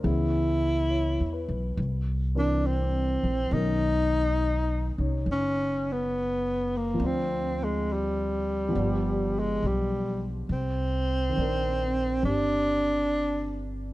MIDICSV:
0, 0, Header, 1, 4, 480
1, 0, Start_track
1, 0, Tempo, 870827
1, 21, Time_signature, 4, 2, 24, 8
1, 7679, End_track
2, 0, Start_track
2, 0, Title_t, "Grand piano"
2, 0, Program_c, 0, 0
2, 0, Control_c, 0, 64, 127
2, 0, Note_on_c, 0, 70, 43
2, 18, Note_on_c, 0, 52, 39
2, 18, Note_on_c, 0, 59, 34
2, 18, Note_on_c, 0, 61, 34
2, 20, Note_on_c, 0, 68, 41
2, 28, Control_c, 0, 64, 0
2, 60, Note_off_c, 0, 70, 0
2, 132, Control_c, 0, 64, 127
2, 498, Note_on_c, 0, 73, 32
2, 732, Note_on_c, 0, 71, 33
2, 878, Note_off_c, 0, 73, 0
2, 978, Note_off_c, 0, 52, 0
2, 978, Note_off_c, 0, 59, 0
2, 978, Note_off_c, 0, 61, 0
2, 979, Note_off_c, 0, 68, 0
2, 987, Control_c, 0, 64, 0
2, 1073, Note_off_c, 0, 71, 0
2, 1097, Control_c, 0, 64, 127
2, 1295, Note_on_c, 0, 52, 37
2, 1299, Note_on_c, 0, 60, 35
2, 1300, Note_on_c, 0, 62, 36
2, 1301, Note_on_c, 0, 70, 44
2, 1933, Note_off_c, 0, 52, 0
2, 1934, Note_on_c, 0, 51, 40
2, 1935, Note_off_c, 0, 60, 0
2, 1936, Note_off_c, 0, 62, 0
2, 1936, Note_off_c, 0, 70, 0
2, 1941, Note_on_c, 0, 47, 36
2, 1943, Control_c, 0, 64, 0
2, 1955, Note_on_c, 0, 61, 36
2, 1959, Note_on_c, 0, 70, 45
2, 2046, Control_c, 0, 64, 127
2, 2737, Note_off_c, 0, 61, 0
2, 2745, Note_on_c, 0, 61, 31
2, 2747, Note_on_c, 0, 63, 31
2, 2757, Note_on_c, 0, 73, 35
2, 3826, Note_on_c, 0, 53, 39
2, 3846, Note_on_c, 0, 60, 37
2, 3852, Note_off_c, 0, 51, 0
2, 3855, Note_off_c, 0, 47, 0
2, 3857, Note_off_c, 0, 61, 0
2, 3858, Note_off_c, 0, 63, 0
2, 3860, Control_c, 0, 64, 0
2, 3863, Note_off_c, 0, 73, 0
2, 3864, Note_off_c, 0, 70, 0
2, 3865, Note_on_c, 0, 62, 34
2, 3883, Note_on_c, 0, 65, 45
2, 3953, Control_c, 0, 64, 127
2, 4779, Note_off_c, 0, 53, 0
2, 4788, Note_on_c, 0, 53, 44
2, 4803, Note_on_c, 0, 59, 41
2, 4813, Note_off_c, 0, 60, 0
2, 4816, Note_off_c, 0, 62, 0
2, 4823, Control_c, 0, 64, 0
2, 4825, Note_on_c, 0, 62, 42
2, 4831, Note_off_c, 0, 65, 0
2, 4847, Note_on_c, 0, 67, 48
2, 4913, Control_c, 0, 64, 127
2, 5770, Note_off_c, 0, 53, 0
2, 5778, Note_off_c, 0, 59, 0
2, 5788, Note_off_c, 0, 62, 0
2, 5791, Control_c, 0, 64, 0
2, 5799, Note_off_c, 0, 67, 0
2, 5883, Control_c, 0, 64, 127
2, 6225, Note_on_c, 0, 51, 41
2, 6252, Note_on_c, 0, 60, 39
2, 6272, Note_on_c, 0, 62, 40
2, 6292, Note_on_c, 0, 70, 51
2, 6727, Note_off_c, 0, 60, 0
2, 6735, Note_on_c, 0, 60, 35
2, 6757, Note_on_c, 0, 67, 37
2, 7679, Note_off_c, 0, 51, 0
2, 7679, Note_off_c, 0, 60, 0
2, 7679, Note_off_c, 0, 62, 0
2, 7679, Note_off_c, 0, 67, 0
2, 7679, Note_off_c, 0, 70, 0
2, 7679, End_track
3, 0, Start_track
3, 0, Title_t, "Tenor saxophone"
3, 0, Program_c, 1, 66
3, 25, Note_on_c, 1, 64, 75
3, 959, Note_off_c, 1, 64, 0
3, 1315, Note_on_c, 1, 62, 66
3, 1470, Note_on_c, 1, 60, 64
3, 1478, Note_off_c, 1, 62, 0
3, 1943, Note_on_c, 1, 63, 83
3, 1952, Note_off_c, 1, 60, 0
3, 2741, Note_off_c, 1, 63, 0
3, 2930, Note_on_c, 1, 61, 76
3, 3262, Note_on_c, 1, 59, 70
3, 3270, Note_off_c, 1, 61, 0
3, 3730, Note_on_c, 1, 58, 58
3, 3738, Note_off_c, 1, 59, 0
3, 3891, Note_on_c, 1, 60, 67
3, 3899, Note_off_c, 1, 58, 0
3, 4209, Note_on_c, 1, 56, 59
3, 4217, Note_off_c, 1, 60, 0
3, 4371, Note_on_c, 1, 55, 60
3, 4379, Note_off_c, 1, 56, 0
3, 5176, Note_on_c, 1, 56, 62
3, 5184, Note_off_c, 1, 55, 0
3, 5329, Note_on_c, 1, 55, 60
3, 5337, Note_off_c, 1, 56, 0
3, 5701, Note_off_c, 1, 55, 0
3, 5800, Note_on_c, 1, 60, 77
3, 6733, Note_off_c, 1, 60, 0
3, 6751, Note_on_c, 1, 62, 86
3, 7528, Note_off_c, 1, 62, 0
3, 7679, End_track
4, 0, Start_track
4, 0, Title_t, "Upright bass"
4, 0, Program_c, 2, 32
4, 22, Note_on_c, 2, 37, 68
4, 638, Note_off_c, 2, 37, 0
4, 663, Note_on_c, 2, 40, 44
4, 810, Note_off_c, 2, 40, 0
4, 819, Note_on_c, 2, 35, 58
4, 967, Note_off_c, 2, 35, 0
4, 978, Note_on_c, 2, 36, 68
4, 1759, Note_off_c, 2, 36, 0
4, 1783, Note_on_c, 2, 34, 51
4, 1927, Note_off_c, 2, 34, 0
4, 1935, Note_on_c, 2, 35, 67
4, 2715, Note_off_c, 2, 35, 0
4, 2746, Note_on_c, 2, 36, 50
4, 2887, Note_off_c, 2, 36, 0
4, 2900, Note_on_c, 2, 30, 61
4, 3834, Note_off_c, 2, 30, 0
4, 3856, Note_on_c, 2, 38, 64
4, 4796, Note_off_c, 2, 38, 0
4, 4825, Note_on_c, 2, 31, 65
4, 5282, Note_off_c, 2, 31, 0
4, 5305, Note_on_c, 2, 35, 55
4, 5765, Note_off_c, 2, 35, 0
4, 5783, Note_on_c, 2, 36, 57
4, 6243, Note_off_c, 2, 36, 0
4, 6269, Note_on_c, 2, 34, 51
4, 6727, Note_off_c, 2, 34, 0
4, 6742, Note_on_c, 2, 31, 63
4, 7679, Note_off_c, 2, 31, 0
4, 7679, End_track
0, 0, End_of_file